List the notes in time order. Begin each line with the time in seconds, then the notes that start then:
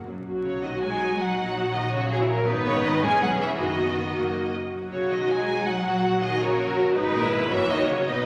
Already playing: F#1
0.06 F#2 F#3 A#3
0.25 B1 F#3 F#4
0.44 C#3 C#5
0.63 D#3 D#5
0.81 G#3 D#4 G#5
1.19 F#3 F#5
1.37 A#1 F#3 F#4
1.74 D#3 D#5
1.92 C#3 F#3 F#4 C#5
2.11 G#4
2.20 E4
2.30 A#4
2.48 G#1 B3 D#4 B4
2.66 C#3 C#5
2.85 D#3 D#5
3.03 E1 G#3 B3 C#4 G#4 G#5
3.22 F#3 F#5
3.40 E3 E5
3.59 F#1 D#3 B3 F#4 D#5
4.15 F#1 A#3 F#4
4.72 B1 F#3 F#4
4.91 C#3 C#5
5.10 D#3 D#5
5.29 G#3 D#4 G#5
5.66 F#3 F#5
5.85 A#1 F#3 F#4
6.04 F#4
6.22 D#3 G#4 D#5
6.40 C#3 F#3 F#4 A#4 C#5
6.96 G#1 G#3 D#4 B4
7.14 A#2 A#4
7.24 E4
7.33 B2 B4
7.51 F#1 E3 A#3 F#4 C#5 E5
7.71 D#3 D#5
7.89 C#3 C#5
8.08 B1 B2 B3 D#4 B4 D#5